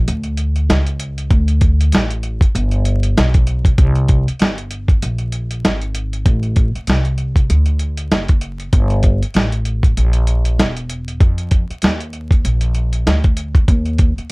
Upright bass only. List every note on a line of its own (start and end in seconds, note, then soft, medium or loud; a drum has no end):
0.08 0.66 D2 medium
0.69 1.28 C#2 medium
1.31 1.90 D2 loud
1.93 2.39 A1 medium
2.41 muted upright bass stroke soft
2.55 3.13 G1 loud
3.17 3.75 B1 medium
3.78 4.25 C2 loud
4.28 muted upright bass stroke soft
4.41 4.99 G1 medium
5.03 5.61 A#1 medium
5.65 6.23 G#1 medium
6.26 6.72 A1 loud
6.75 muted upright bass stroke soft
6.87 7.46 C2 medium
7.50 8.08 D2 loud
8.12 8.70 F#1 medium
8.73 9.20 G1 loud
9.22 muted upright bass stroke soft
9.35 9.94 A1 medium
9.97 10.60 A#1 medium
10.59 11.18 E1 medium
11.21 11.67 F2 loud
11.70 muted upright bass stroke soft
11.83 12.41 D#2 medium
12.45 13.03 A#1 medium
13.07 13.65 D2 medium
13.68 14.15 D#2 loud
14.18 muted upright bass stroke soft